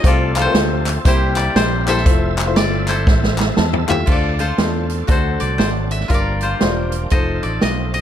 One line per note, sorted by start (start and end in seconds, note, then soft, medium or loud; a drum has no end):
0.00 0.47 C2 loud
0.00 0.82 C3 medium
0.00 1.02 F3 medium
0.00 1.02 A3 medium
0.00 0.28 A3 medium
0.00 1.02 C4 medium
0.00 0.28 C4 medium
0.00 1.07 G4 medium
0.00 0.10 G#4 medium
0.00 0.13 A#4 medium
0.00 0.12 C#5 loud
0.00 0.12 D#5 medium
0.00 0.48 F5 loud
0.00 kick loud
0.04 0.28 F4 medium
0.04 0.35 F4 medium
0.04 0.38 A4 medium
0.04 0.28 C5 medium
0.04 1.36 D5 medium
0.04 closed hi-hat loud
0.08 1.05 A4 medium
0.35 1.13 F4 medium
0.35 1.88 A4 medium
0.35 snare soft
0.35 clap loud
0.35 closed hi-hat medium
0.41 0.96 A3 medium
0.41 0.96 C4 medium
0.41 0.96 F4 medium
0.41 1.06 C5 medium
0.46 0.50 A#4 medium
0.52 0.97 D2 medium
0.52 1.00 C5 loud
0.52 snare loud
0.52 closed hi-hat medium
0.86 clap medium
0.86 closed hi-hat medium
1.04 1.48 C2 loud
1.04 1.83 C3 medium
1.04 2.04 G3 medium
1.04 1.68 A#3 medium
1.04 2.04 C4 medium
1.04 2.04 E4 medium
1.04 1.68 E4 medium
1.04 2.88 E4 medium
1.04 1.68 G4 medium
1.04 3.11 G4 medium
1.04 2.04 A#4 medium
1.04 1.56 C5 medium
1.04 1.69 C5 loud
1.04 kick loud
1.04 closed hi-hat loud
1.36 2.56 D5 medium
1.36 clap loud
1.36 closed hi-hat medium
1.56 2.07 A#1 loud
1.56 1.89 C5 medium
1.56 snare loud
1.56 closed hi-hat medium
1.86 1.96 A#3 medium
1.86 1.96 E4 medium
1.86 1.97 G4 medium
1.86 2.89 A4 medium
1.86 1.97 C5 medium
1.86 2.88 C5 medium
1.86 3.38 E5 loud
1.86 clap medium
1.86 closed hi-hat medium
1.97 snare soft
2.05 2.56 F1 loud
2.05 4.04 F3 medium
2.05 2.29 A3 medium
2.05 4.04 C4 medium
2.05 2.30 E4 medium
2.05 2.30 F4 medium
2.05 4.04 A4 medium
2.05 2.30 C5 medium
2.05 4.04 E5 medium
2.05 kick loud
2.05 closed hi-hat loud
2.38 snare soft
2.38 clap loud
2.38 closed hi-hat medium
2.46 2.98 A3 medium
2.46 2.98 E4 medium
2.46 2.98 F4 medium
2.46 2.98 C5 medium
2.56 3.07 G1 medium
2.56 4.11 D5 medium
2.56 snare loud
2.56 closed hi-hat medium
2.88 4.12 E4 medium
2.88 4.08 A4 soft
2.88 4.40 C5 medium
2.88 clap medium
2.88 closed hi-hat medium
3.07 3.50 A1 loud
3.07 kick loud
3.07 snare medium
3.24 snare medium
3.38 snare medium
3.38 clap loud
3.57 3.85 E2 loud
3.57 3.86 A5 medium
3.57 snare medium
3.73 floor tom medium
3.88 4.05 D#2 medium
3.88 3.98 A3 medium
3.88 3.98 E4 medium
3.88 3.99 F4 medium
3.88 3.99 G4 loud
3.88 4.12 E5 medium
3.88 4.07 F5 medium
3.88 clap loud
3.88 floor tom medium
4.06 4.51 D2 medium
4.06 4.87 D3 medium
4.06 4.40 A3 medium
4.06 5.06 C4 soft
4.06 4.40 D4 medium
4.06 5.07 D4 soft
4.06 4.39 F4 medium
4.06 5.08 F4 medium
4.06 4.40 F4 medium
4.06 4.16 G4 soft
4.06 4.39 A4 medium
4.06 4.41 C5 medium
4.06 kick medium
4.06 crash medium
4.12 5.06 A4 medium
4.12 5.40 D5 medium
4.39 5.13 F4 medium
4.39 5.09 A4 soft
4.39 5.11 C5 medium
4.39 snare soft
4.39 closed hi-hat medium
4.58 5.02 E2 medium
4.58 5.06 A3 medium
4.58 5.07 D4 medium
4.58 5.10 F4 medium
4.58 5.10 A4 medium
4.58 snare loud
4.58 closed hi-hat medium
4.89 closed hi-hat medium
5.07 5.36 D2 medium
5.07 5.87 D3 medium
5.07 6.08 F#3 medium
5.07 5.95 A3 medium
5.07 6.08 C4 soft
5.07 6.08 D4 medium
5.07 5.95 D4 medium
5.07 6.14 F#4 medium
5.07 5.95 F#4 medium
5.07 6.08 A4 medium
5.07 6.17 A4 medium
5.07 5.96 C5 medium
5.07 5.58 C5 medium
5.07 kick loud
5.07 closed hi-hat medium
5.40 5.58 C2 medium
5.40 6.14 D5 medium
5.40 closed hi-hat medium
5.58 6.03 G#1 medium
5.58 5.67 C5 medium
5.58 snare loud
5.58 closed hi-hat medium
5.91 6.14 E5 medium
5.91 closed hi-hat medium
6.00 snare soft
6.08 6.53 G1 medium
6.08 6.89 G2 medium
6.08 7.10 F3 medium
6.08 6.42 G3 medium
6.08 7.10 A#3 medium
6.08 7.10 D4 soft
6.08 6.42 D4 medium
6.08 6.43 F4 medium
6.08 7.09 G4 medium
6.08 6.43 A#4 medium
6.08 7.19 A#4 medium
6.08 kick medium
6.08 closed hi-hat medium
6.14 7.18 D5 medium
6.41 8.01 F4 soft
6.41 7.13 C5 medium
6.41 closed hi-hat medium
6.61 7.05 E1 medium
6.61 7.12 G3 medium
6.61 7.12 D4 medium
6.61 7.12 F4 medium
6.61 7.12 C5 medium
6.61 snare medium
6.61 closed hi-hat medium
6.92 closed hi-hat medium
7.10 7.39 F1 medium
7.10 8.01 F3 medium
7.10 7.98 A3 medium
7.10 8.01 C4 medium
7.10 8.01 D#4 soft
7.10 7.98 D#4 medium
7.10 7.99 F4 medium
7.10 8.01 A4 medium
7.10 8.01 C5 medium
7.10 7.99 C5 medium
7.10 7.49 D#5 medium
7.10 kick loud
7.10 closed hi-hat medium
7.43 7.60 A1 medium
7.43 7.68 D5 medium
7.43 closed hi-hat medium
7.61 8.01 B1 medium
7.61 7.93 D#5 medium
7.61 snare loud
7.61 closed hi-hat medium
7.94 8.01 D#5 medium
7.94 closed hi-hat medium